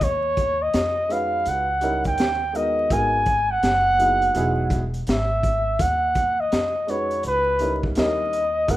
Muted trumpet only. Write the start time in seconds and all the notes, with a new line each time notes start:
0.04 C#5
0.62 D#5
1.12 F5
1.49 F#5
2.07 G5
2.56 D#5
2.92 G#5
3.51 F#5
5.09 E5
5.81 F#5
6.40 D#5
6.90 C#5
7.27 B4
7.99 D#5
8.71 F#5